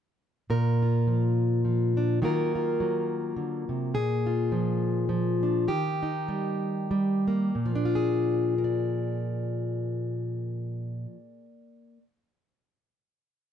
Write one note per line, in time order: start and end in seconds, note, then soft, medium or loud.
0.50 2.19 A#2 medium
0.50 2.25 A#4 medium
0.82 2.24 F4 soft
1.07 1.64 F3 medium
1.65 2.22 F3 medium
1.97 2.19 D4 soft
2.22 3.36 D#3 medium
2.22 2.79 F#3 medium
2.22 5.42 A#3 medium
2.22 2.55 F4 medium
2.22 3.94 A#4 medium
2.55 3.91 F4 medium
2.80 3.91 F#3 medium
3.36 3.69 D3 medium
3.69 3.94 C3 medium
3.94 5.66 A#2 medium
3.94 5.66 G#4 medium
4.26 5.66 F4 medium
4.52 5.08 F3 medium
5.09 5.68 F3 medium
5.43 5.66 D4 soft
5.68 7.52 D#3 medium
5.68 7.55 G4 medium
6.03 7.52 D#4 medium
6.28 6.90 G3 medium
6.91 7.52 G3 medium
7.28 7.75 A#3 soft
7.55 11.05 A#2 medium
7.66 11.16 F3 medium
7.75 8.58 D4 medium
7.85 8.64 F4 medium
7.95 11.45 G#4 medium
8.58 11.98 A#4 medium
8.64 12.03 D5 medium